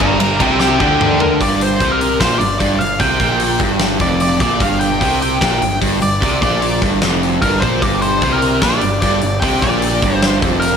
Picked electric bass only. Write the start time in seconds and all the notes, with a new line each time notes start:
0.00 G1
0.21 G1
0.41 C2
0.80 D2
1.41 G1
1.81 C2
2.21 A#1
2.42 G1
2.61 G1
2.83 G1
3.00 C2
3.20 A#1
3.60 G1
4.01 F1
4.41 A#1
4.61 G1
5.01 C2
5.41 A#1
5.61 G1
5.82 G1
6.02 G1
6.23 C2
6.42 A#1
6.83 G1
7.03 F1
7.43 G1
7.62 A#1
7.82 G1
8.22 C2
8.62 A#1
8.83 G1
9.03 G1
9.23 G1
9.43 C2
9.63 A#1
10.03 G1
10.43 F1